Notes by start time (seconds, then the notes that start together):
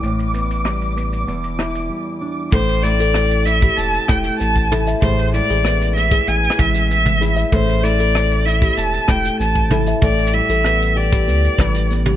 Already playing: D6
0.03 A1 A2, shaker
0.19 shaker
0.34 B3, shaker
0.51 shaker
0.65 G3, cross-stick, shaker
0.82 shaker
0.96 B3, shaker
1.13 shaker
1.27 E1 E2, shaker
1.44 shaker
1.58 E4, cross-stick, shaker
1.75 shaker
1.90 G3
2.21 D4
2.52 A1 A2 A4 C5, kick, closed hi-hat, mid tom, shaker
2.69 shaker
2.83 A3 E4 D5, shaker
2.99 A4, closed hi-hat, shaker
3.14 C4, cross-stick, closed hi-hat, shaker
3.31 shaker
3.46 E4 E5, shaker
3.61 G4, kick, closed hi-hat, shaker
3.77 E1 C4 A5, closed hi-hat, shaker
3.94 shaker
4.08 E1 A3 E4 G5, kick, cross-stick, shaker
4.24 closed hi-hat, shaker
4.39 A1 C4 A5, closed hi-hat, shaker
4.56 kick, shaker
4.71 E4 A4, mid tom, shaker
4.87 E5, closed hi-hat, shaker
5.02 A1 A2 G#4 C5, kick, closed hi-hat, mid tom, shaker
5.19 shaker
5.33 G#3 E4 D5, shaker
5.50 A1 G#4, closed hi-hat, shaker
5.65 B3, cross-stick, closed hi-hat, shaker
5.82 shaker
5.96 E4 E5, shaker
6.11 G#4, kick, closed hi-hat, shaker
6.27 A1 B3 G#5, closed hi-hat, shaker
6.44 shaker
6.50 cross-stick
6.58 A1 G#3 E4 E5, kick, mid tom, shaker
6.74 closed hi-hat, shaker
6.90 B3 E5, shaker
7.06 mid tom, shaker
7.21 E4 G#4, shaker
7.36 E5, closed hi-hat, shaker
7.52 A1 A2 A4 C5, kick, closed hi-hat, mid tom, shaker
7.69 shaker
7.83 A3 E4 D5, shaker
7.99 A4, closed hi-hat, shaker
8.15 C4, cross-stick, closed hi-hat, shaker
8.31 shaker
8.46 E4 E5, shaker
8.62 G4, kick, closed hi-hat, shaker
8.77 E1 C4 A5, closed hi-hat, shaker
8.93 shaker
9.08 E1 A3 E4 G5, kick, cross-stick, shaker
9.25 closed hi-hat, shaker
9.39 A1 C4 A5, closed hi-hat, shaker
9.55 kick, shaker
9.70 E4 A4, mid tom, shaker
9.86 E5, closed hi-hat, shaker
10.02 A1 A2 A4 D5, kick, closed hi-hat, mid tom, shaker
10.19 shaker
10.27 shaker
10.33 G3 E4 E5
10.49 A1 A4, closed hi-hat, shaker
10.64 B3, cross-stick, closed hi-hat, shaker
10.82 shaker
10.96 G4 D5
11.12 G4, kick, closed hi-hat, shaker
11.27 D2 B3, closed hi-hat, shaker
11.45 shaker
11.58 A1 G3 B4, kick, cross-stick, mid tom, shaker
11.74 closed hi-hat, shaker
11.90 B3, closed hi-hat, shaker
12.06 G4, mid tom, shaker